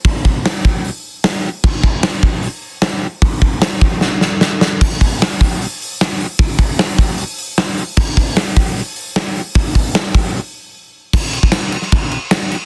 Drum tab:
CC |----------------|x---------------|----------------|x---------------|
HH |o---o---o---o---|----o---o---o---|o---o-----------|--o-o-o-o-o---o-|
SD |----o-------o---|----o-------o---|----o---o-o-o-o-|----o-------o---|
BD |o-o---o---------|o-o---o---------|o-o---o---------|o-o---o---------|

CC |----------------|x---------------|----------------|x-x-x-x-x-x-x-x-|
HH |o-o-o-o-o-o-o-o-|--o-o-o-o-o---o-|o-o---o---------|----------------|
SD |----o-------o---|----o-------o---|----o-----------|----o--o----o---|
BD |o-o---o---------|o-o---o---------|o-o---o---------|o--o----o-------|